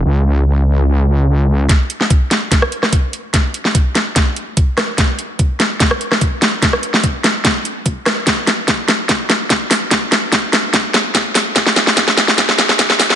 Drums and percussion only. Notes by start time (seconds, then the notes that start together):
1.69 kick, snare, closed hi-hat
1.90 closed hi-hat
2.01 snare
2.10 kick, closed hi-hat
2.31 snare, closed hi-hat
2.51 kick, snare, closed hi-hat
2.62 cross-stick
2.72 closed hi-hat
2.83 cross-stick, snare
2.93 kick, closed hi-hat
3.13 closed hi-hat
3.34 kick, snare, closed hi-hat
3.54 closed hi-hat
3.65 snare
3.75 kick, closed hi-hat
3.95 snare, closed hi-hat
4.16 kick, snare, closed hi-hat
4.36 closed hi-hat
4.57 kick, closed hi-hat
4.78 cross-stick, snare, closed hi-hat
4.98 kick, snare, closed hi-hat
5.19 closed hi-hat
5.39 kick, closed hi-hat
5.60 snare, closed hi-hat
5.80 kick, snare, closed hi-hat
5.91 cross-stick
6.01 closed hi-hat
6.12 cross-stick, snare
6.21 kick, closed hi-hat
6.42 snare, closed hi-hat
6.62 kick, snare, closed hi-hat
6.73 cross-stick
6.83 closed hi-hat
6.94 snare
7.03 kick, closed hi-hat
7.24 snare, closed hi-hat
7.45 kick, snare, closed hi-hat
7.65 closed hi-hat
7.86 kick, closed hi-hat
8.06 cross-stick, snare, closed hi-hat
8.27 kick, snare, closed hi-hat
8.47 snare, closed hi-hat
8.68 kick, snare, closed hi-hat
8.88 snare, closed hi-hat
9.09 kick, snare, closed hi-hat
9.30 snare, closed hi-hat
9.50 kick, snare, closed hi-hat
9.71 snare, open hi-hat
9.91 kick, snare, closed hi-hat
10.12 snare, closed hi-hat
10.32 kick, snare, closed hi-hat
10.53 snare, closed hi-hat
10.73 kick, snare, closed hi-hat
10.94 snare, closed hi-hat
11.15 kick, snare, closed hi-hat
11.35 snare, open hi-hat
11.56 kick, snare, closed hi-hat
11.66 snare
11.76 snare, closed hi-hat
11.87 snare
11.97 kick, snare, closed hi-hat
12.08 snare
12.17 snare, closed hi-hat
12.28 snare
12.38 kick, snare, closed hi-hat
12.49 snare
12.58 snare, closed hi-hat
12.69 snare
12.79 kick, snare, closed hi-hat
12.90 snare
12.99 snare, open hi-hat
13.10 snare